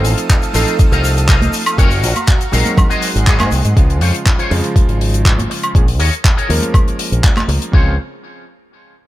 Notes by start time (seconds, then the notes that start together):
Already playing: F3 A3 C4 D#4 A4 C5 D#5 F5 D#6
0.04 A1, open hi-hat, shaker
0.18 closed hi-hat, shaker
0.30 kick, clap, closed hi-hat, shaker
0.42 closed hi-hat, shaker
0.53 A1 F3 A3 C4 D#4 A4 C5 D#5 F5, open hi-hat, shaker
0.67 closed hi-hat, shaker
0.79 muted fingered electric bass stroke, kick, closed hi-hat, shaker
0.92 C2 A4 C5 D#5 F5, closed hi-hat, shaker
1.05 open hi-hat, shaker
1.17 closed hi-hat, shaker
1.28 A4 C5 D#5 F5, kick, clap, closed hi-hat, shaker
1.42 closed hi-hat, high conga, shaker
1.53 open hi-hat, shaker
1.66 closed hi-hat, high woodblock, shaker
1.78 F#1 F#3 A#3 C#4 F4 F#4 A#4 C#5 F5 A#5, kick, closed hi-hat, shaker
1.91 open hi-hat, shaker
2.03 A#1, open hi-hat, shaker
2.16 closed hi-hat, high conga, high woodblock, shaker
2.27 kick, clap, closed hi-hat, shaker
2.41 closed hi-hat, shaker
2.52 A#1 F#3 G#3 C4 D#4 F#4 A#4 C#5 F5, open hi-hat, shaker
2.65 closed hi-hat, high conga, shaker
2.77 G#4 F#5 C6, kick, closed hi-hat, low conga, high woodblock, shaker
2.89 F#4 G#4 C5 D#5, closed hi-hat, shaker
3.02 open hi-hat, shaker
3.15 G#1, closed hi-hat, shaker
3.26 F#4 G#4 C5 D#5, kick, clap, closed hi-hat, shaker
3.40 G#2, clap, closed hi-hat, high conga, high woodblock, shaker
3.52 C2, open hi-hat, shaker
3.65 G#2, closed hi-hat, shaker
3.76 C#2 C#3 F3 G#3 F4, kick, closed hi-hat
3.90 closed hi-hat
4.01 F2 F4 C5 C#5, open hi-hat
4.14 closed hi-hat
4.26 muted clean electric guitar stroke, kick, clap, closed hi-hat
4.38 F4 C5 C#5, closed hi-hat
4.50 F2 C#3 F3 G#3 F4, open hi-hat
4.64 muted clean electric guitar stroke, closed hi-hat
4.76 muted fingered electric bass stroke, kick, closed hi-hat
4.89 G#1, closed hi-hat
5.01 open hi-hat
5.14 closed hi-hat
5.25 kick, clap, closed hi-hat
5.38 muted clean electric guitar stroke, closed hi-hat, high conga
5.50 muted clean electric guitar stroke, open hi-hat
5.63 muted clean electric guitar stroke, closed hi-hat, high woodblock
5.75 A#1 F3 G#3 A#3 C#4 G#4, kick, closed hi-hat
5.88 open hi-hat
5.99 D#2 G#4 A#4 C#5, open hi-hat
6.13 closed hi-hat
6.24 muted clean electric guitar stroke, kick, clap, closed hi-hat
6.37 G#4 A#4 C#5, closed hi-hat
6.49 D#2 F3 G#3 A#3 C#4 A#4, open hi-hat
6.62 muted clean electric guitar stroke, closed hi-hat, high conga
6.74 kick, closed hi-hat, high woodblock
6.88 closed hi-hat
6.99 open hi-hat
7.12 A#1, closed hi-hat
7.24 kick, clap, closed hi-hat
7.37 muted clean electric guitar stroke, clap, closed hi-hat, high conga, high woodblock
7.48 C#2, muted clean electric guitar stroke, open hi-hat
7.61 muted clean electric guitar stroke, closed hi-hat
7.72 C#2 C#3 F3 G#3 C4 F4 C5 C#5, kick